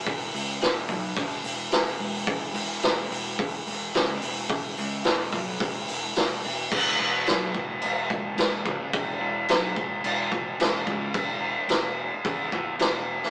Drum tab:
CC |----------------|----------------|----------------|x---x---x---x---|
HH |o-o-o-o-o-o-o-o-|o-o-o-o-o-o-o-o-|o-o-o-o-o-o-o-o-|----------------|
SD |----o-------o---|----o-------o---|----o-------o---|----o-------o---|
BD |o-----o-o-------|o-------o-------|o-----o-o-------|o-----o---o---o-|

CC |x---x---x---x---|x---x---x---x---|
HH |----------------|----------------|
SD |----o-------o---|----o-------o--o|
BD |o-----o---o---o-|o-------o-o-----|